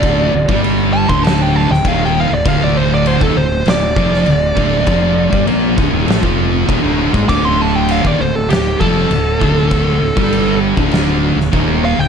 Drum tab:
CC |x---x---x---x---|x---x---x---x---|x---x---x---x---|x---x---x---x---|
SD |--------o--o----|--------o--o----|--------o-------|--------o-------|
BD |o--o---o----o---|o----o----o---o-|o--o--o--o--o--o|o----o----o---o-|

CC |x---x---x---x---|
SD |--------o--o----|
BD |o--o---o----o---|